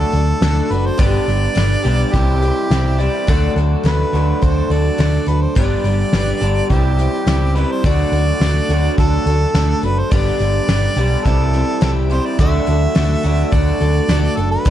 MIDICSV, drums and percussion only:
0, 0, Header, 1, 2, 480
1, 0, Start_track
1, 0, Tempo, 569801
1, 836, Time_signature, 4, 2, 24, 8
1, 12383, End_track
2, 0, Start_track
2, 0, Title_t, "Drums"
2, 110, Note_on_c, 9, 42, 61
2, 195, Note_off_c, 9, 42, 0
2, 353, Note_on_c, 9, 42, 80
2, 355, Note_on_c, 9, 38, 91
2, 438, Note_off_c, 9, 42, 0
2, 439, Note_off_c, 9, 38, 0
2, 598, Note_on_c, 9, 42, 56
2, 682, Note_off_c, 9, 42, 0
2, 833, Note_on_c, 9, 42, 86
2, 834, Note_on_c, 9, 36, 97
2, 917, Note_off_c, 9, 42, 0
2, 918, Note_off_c, 9, 36, 0
2, 1081, Note_on_c, 9, 42, 59
2, 1165, Note_off_c, 9, 42, 0
2, 1324, Note_on_c, 9, 42, 70
2, 1325, Note_on_c, 9, 38, 91
2, 1408, Note_off_c, 9, 42, 0
2, 1410, Note_off_c, 9, 38, 0
2, 1561, Note_on_c, 9, 42, 53
2, 1646, Note_off_c, 9, 42, 0
2, 1800, Note_on_c, 9, 36, 77
2, 1800, Note_on_c, 9, 42, 72
2, 1884, Note_off_c, 9, 36, 0
2, 1884, Note_off_c, 9, 42, 0
2, 2040, Note_on_c, 9, 42, 57
2, 2125, Note_off_c, 9, 42, 0
2, 2284, Note_on_c, 9, 42, 70
2, 2286, Note_on_c, 9, 38, 91
2, 2368, Note_off_c, 9, 42, 0
2, 2370, Note_off_c, 9, 38, 0
2, 2525, Note_on_c, 9, 42, 52
2, 2610, Note_off_c, 9, 42, 0
2, 2766, Note_on_c, 9, 36, 101
2, 2770, Note_on_c, 9, 42, 73
2, 2850, Note_off_c, 9, 36, 0
2, 2854, Note_off_c, 9, 42, 0
2, 3011, Note_on_c, 9, 42, 55
2, 3096, Note_off_c, 9, 42, 0
2, 3251, Note_on_c, 9, 42, 67
2, 3252, Note_on_c, 9, 38, 87
2, 3335, Note_off_c, 9, 42, 0
2, 3336, Note_off_c, 9, 38, 0
2, 3493, Note_on_c, 9, 42, 52
2, 3578, Note_off_c, 9, 42, 0
2, 3728, Note_on_c, 9, 36, 76
2, 3732, Note_on_c, 9, 42, 79
2, 3812, Note_off_c, 9, 36, 0
2, 3816, Note_off_c, 9, 42, 0
2, 3970, Note_on_c, 9, 42, 60
2, 4054, Note_off_c, 9, 42, 0
2, 4211, Note_on_c, 9, 42, 77
2, 4213, Note_on_c, 9, 38, 104
2, 4296, Note_off_c, 9, 42, 0
2, 4297, Note_off_c, 9, 38, 0
2, 4445, Note_on_c, 9, 42, 60
2, 4529, Note_off_c, 9, 42, 0
2, 4686, Note_on_c, 9, 42, 83
2, 4687, Note_on_c, 9, 36, 97
2, 4770, Note_off_c, 9, 42, 0
2, 4771, Note_off_c, 9, 36, 0
2, 4926, Note_on_c, 9, 42, 59
2, 5010, Note_off_c, 9, 42, 0
2, 5162, Note_on_c, 9, 42, 70
2, 5163, Note_on_c, 9, 38, 88
2, 5246, Note_off_c, 9, 42, 0
2, 5248, Note_off_c, 9, 38, 0
2, 5407, Note_on_c, 9, 42, 56
2, 5492, Note_off_c, 9, 42, 0
2, 5646, Note_on_c, 9, 36, 76
2, 5647, Note_on_c, 9, 42, 79
2, 5731, Note_off_c, 9, 36, 0
2, 5732, Note_off_c, 9, 42, 0
2, 5887, Note_on_c, 9, 42, 61
2, 5971, Note_off_c, 9, 42, 0
2, 6126, Note_on_c, 9, 42, 72
2, 6128, Note_on_c, 9, 38, 95
2, 6210, Note_off_c, 9, 42, 0
2, 6212, Note_off_c, 9, 38, 0
2, 6364, Note_on_c, 9, 42, 56
2, 6448, Note_off_c, 9, 42, 0
2, 6602, Note_on_c, 9, 42, 75
2, 6605, Note_on_c, 9, 36, 104
2, 6686, Note_off_c, 9, 42, 0
2, 6689, Note_off_c, 9, 36, 0
2, 6845, Note_on_c, 9, 42, 56
2, 6929, Note_off_c, 9, 42, 0
2, 7086, Note_on_c, 9, 42, 63
2, 7088, Note_on_c, 9, 38, 87
2, 7170, Note_off_c, 9, 42, 0
2, 7172, Note_off_c, 9, 38, 0
2, 7326, Note_on_c, 9, 42, 58
2, 7410, Note_off_c, 9, 42, 0
2, 7563, Note_on_c, 9, 42, 76
2, 7566, Note_on_c, 9, 36, 80
2, 7647, Note_off_c, 9, 42, 0
2, 7650, Note_off_c, 9, 36, 0
2, 7806, Note_on_c, 9, 42, 59
2, 7890, Note_off_c, 9, 42, 0
2, 8040, Note_on_c, 9, 42, 77
2, 8041, Note_on_c, 9, 38, 100
2, 8124, Note_off_c, 9, 42, 0
2, 8126, Note_off_c, 9, 38, 0
2, 8280, Note_on_c, 9, 42, 55
2, 8364, Note_off_c, 9, 42, 0
2, 8518, Note_on_c, 9, 42, 85
2, 8524, Note_on_c, 9, 36, 109
2, 8602, Note_off_c, 9, 42, 0
2, 8608, Note_off_c, 9, 36, 0
2, 8763, Note_on_c, 9, 42, 61
2, 8847, Note_off_c, 9, 42, 0
2, 9002, Note_on_c, 9, 42, 75
2, 9004, Note_on_c, 9, 38, 96
2, 9086, Note_off_c, 9, 42, 0
2, 9088, Note_off_c, 9, 38, 0
2, 9240, Note_on_c, 9, 42, 59
2, 9324, Note_off_c, 9, 42, 0
2, 9481, Note_on_c, 9, 36, 81
2, 9482, Note_on_c, 9, 42, 77
2, 9566, Note_off_c, 9, 36, 0
2, 9567, Note_off_c, 9, 42, 0
2, 9718, Note_on_c, 9, 42, 58
2, 9803, Note_off_c, 9, 42, 0
2, 9955, Note_on_c, 9, 42, 76
2, 9957, Note_on_c, 9, 38, 100
2, 10039, Note_off_c, 9, 42, 0
2, 10041, Note_off_c, 9, 38, 0
2, 10197, Note_on_c, 9, 42, 55
2, 10281, Note_off_c, 9, 42, 0
2, 10431, Note_on_c, 9, 42, 81
2, 10437, Note_on_c, 9, 36, 104
2, 10515, Note_off_c, 9, 42, 0
2, 10522, Note_off_c, 9, 36, 0
2, 10671, Note_on_c, 9, 42, 55
2, 10755, Note_off_c, 9, 42, 0
2, 10913, Note_on_c, 9, 42, 70
2, 10915, Note_on_c, 9, 38, 89
2, 10998, Note_off_c, 9, 42, 0
2, 10999, Note_off_c, 9, 38, 0
2, 11157, Note_on_c, 9, 42, 55
2, 11241, Note_off_c, 9, 42, 0
2, 11390, Note_on_c, 9, 42, 77
2, 11393, Note_on_c, 9, 36, 80
2, 11475, Note_off_c, 9, 42, 0
2, 11477, Note_off_c, 9, 36, 0
2, 11628, Note_on_c, 9, 42, 54
2, 11712, Note_off_c, 9, 42, 0
2, 11870, Note_on_c, 9, 42, 74
2, 11872, Note_on_c, 9, 38, 101
2, 11954, Note_off_c, 9, 42, 0
2, 11956, Note_off_c, 9, 38, 0
2, 12105, Note_on_c, 9, 42, 61
2, 12189, Note_off_c, 9, 42, 0
2, 12343, Note_on_c, 9, 42, 80
2, 12348, Note_on_c, 9, 36, 103
2, 12383, Note_off_c, 9, 36, 0
2, 12383, Note_off_c, 9, 42, 0
2, 12383, End_track
0, 0, End_of_file